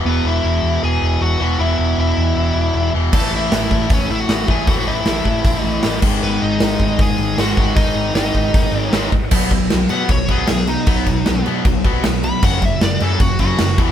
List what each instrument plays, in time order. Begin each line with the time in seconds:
0.04 picked electric bass E1, distorted electric guitar E2 B2 E3, lead electric guitar B3
0.09 lead electric guitar B4
0.25 picked electric bass E1, lead electric guitar E4 E5
0.44 picked electric bass E1
0.63 picked electric bass E2
0.83 picked electric bass E1, lead electric guitar G#4 G#5
1.02 picked electric bass E1
1.21 picked electric bass E1, lead electric guitar F#4 F#5
1.39 picked electric bass E1, distorted electric guitar B2 E3
1.43 distorted electric guitar E2
1.59 picked electric bass E1, distorted electric guitar E2 B2 E3, lead electric guitar E4 E5
1.79 picked electric bass E1
1.98 picked electric bass E1, lead electric guitar E4 E5
2.17 picked electric bass E2
2.36 picked electric bass E1
2.56 picked electric bass E1
2.75 picked electric bass E1
2.94 picked electric bass E1, distorted electric guitar E2 B2 E3
3.13 picked electric bass A1, distorted electric guitar A2 E3 A3, lead electric guitar A4 A5, kick, crash
3.33 picked electric bass A1, lead electric guitar E4 E5
3.52 picked electric bass A1, snare, open hi-hat
3.71 picked electric bass A2, kick
3.90 picked electric bass A1, lead electric guitar C#4 C#5, kick, open hi-hat
4.08 picked electric bass A1, distorted electric guitar E3 A3, lead electric guitar E4 E5
4.12 distorted electric guitar A2
4.20 lead electric guitar F#4 F#5
4.28 picked electric bass A1, distorted electric guitar A2 E3 A3, snare, open hi-hat
4.47 picked electric bass A1, distorted electric guitar A2 E3 A3, lead electric guitar G#4 G#5, kick
4.67 picked electric bass A1, distorted electric guitar A2 E3, lead electric guitar F#4 F#5, kick, open hi-hat
4.72 distorted electric guitar A3
4.87 picked electric bass A1, lead electric guitar E4 E5
5.06 picked electric bass A1, snare, open hi-hat
5.25 picked electric bass A2, kick
5.44 picked electric bass A1, kick, open hi-hat
5.61 picked electric bass A1, distorted electric guitar A3, lead electric guitar D#5
5.66 distorted electric guitar A2 E3
5.83 picked electric bass A1, distorted electric guitar A2 E3, snare, open hi-hat
5.88 distorted electric guitar A3
6.02 picked electric bass G#1, distorted electric guitar G#2 D#3 G#3, kick, crash
6.23 picked electric bass G#1, lead electric guitar B3 B4
6.42 picked electric bass G#1, lead electric guitar D#4 D#5
6.60 picked electric bass G#1, snare, open hi-hat
6.80 picked electric bass G#2, kick
6.98 picked electric bass G#1, distorted electric guitar G#2 D#3 G#3, lead electric guitar G#4, kick, open hi-hat
7.02 lead electric guitar G#5
7.18 picked electric bass G#1, distorted electric guitar G#2 D#3 G#3
7.36 picked electric bass G#1, distorted electric guitar G#2 D#3 G#3, lead electric guitar F#5, snare, open hi-hat
7.40 lead electric guitar F#4
7.56 picked electric bass G#1, distorted electric guitar G#2 D#3 G#3, kick
7.76 picked electric bass G#1, lead electric guitar D#4 D#5, kick, open hi-hat
7.95 picked electric bass G#1
8.15 picked electric bass G#1, lead electric guitar D#4 D#5, snare, open hi-hat
8.35 picked electric bass G#2, kick
8.53 picked electric bass G#1, distorted electric guitar G#2 D#3 G#3, kick, open hi-hat
8.72 picked electric bass G#1, distorted electric guitar D#3 G#3
8.77 distorted electric guitar G#2
8.81 lead electric guitar C#5
8.91 picked electric bass G#1, distorted electric guitar G#2 D#3 G#3, snare, open hi-hat
9.12 picked electric bass G#1, kick
9.31 picked electric bass B1, distorted electric guitar B2 F#3 B3, kick, crash
9.50 picked electric bass B1, distorted electric guitar B2 F#3, kick, crash
9.70 picked electric bass B1, distorted electric guitar B2 F#3, snare, crash
9.89 picked electric bass B2, distorted electric guitar B2 F#3 B3, lead electric guitar F#5, crash
10.09 picked electric bass B1, distorted electric guitar B2 F#3, lead electric guitar C#5, kick, crash
10.28 picked electric bass B1, distorted electric guitar B2 F#3 B3, lead electric guitar G#4, kick, crash
10.47 picked electric bass B1, distorted electric guitar B2 F#3 B3, snare, crash
10.67 distorted electric guitar B2 F#3, lead electric guitar D#4, crash
10.86 picked electric bass B1, distorted electric guitar B2 F#3 B3, kick, crash
11.06 picked electric bass B1, distorted electric guitar B2 F#3, kick, crash
11.26 picked electric bass B1, distorted electric guitar B2 F#3, snare, crash
11.46 distorted electric guitar B2 F#3 B3, picked electric bass B2, crash
11.65 picked electric bass B1, distorted electric guitar B2 F#3, kick, crash
11.84 picked electric bass B1, distorted electric guitar B2 F#3 B3, kick, crash
12.04 picked electric bass B1, distorted electric guitar B2 F#3, snare, crash
12.08 distorted electric guitar B3
12.23 distorted electric guitar B2 F#3, lead electric guitar B5, crash
12.42 picked electric bass F#1, distorted electric guitar F#2 C#3 F#3, lead electric guitar F#5, kick, crash
12.62 picked electric bass F#1, distorted electric guitar F#2 C#3, lead electric guitar E5, kick, crash
12.81 picked electric bass F#1, distorted electric guitar F#2 C#3, lead electric guitar D5, snare, crash
13.00 distorted electric guitar F#2 C#3 F#3, picked electric bass F#2, lead electric guitar A4, crash
13.20 picked electric bass F#1, distorted electric guitar F#2 C#3, lead electric guitar F#4, kick, crash
13.39 picked electric bass F#1, distorted electric guitar F#2 C#3 F#3, lead electric guitar F#4, kick, crash
13.58 picked electric bass F#1, distorted electric guitar F#2 C#3 F#3, snare, crash
13.78 picked electric bass E1, distorted electric guitar E2 B2 E3, kick, crash